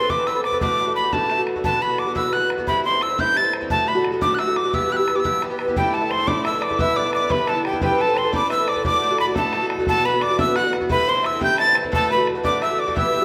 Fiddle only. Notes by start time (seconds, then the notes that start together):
5.76 G4
5.93 A4
6.10 C5
6.27 D5
6.44 E5
6.61 D5
6.79 E5
6.95 D5
7.12 D5
7.30 B4
7.47 A4
7.64 G4
7.81 G4
7.98 A4
8.15 C5
8.32 D5
8.50 E5
8.67 D5
8.85 D5
9.35 A4
9.87 A4
10.05 B4
10.21 D5
10.39 E5
10.56 F#5
10.90 B4
11.07 C5
11.24 E5
11.41 G5
11.54 A5 B5
11.93 A4
12.10 B4
12.44 D5
12.62 E5
12.79 D5
12.96 E5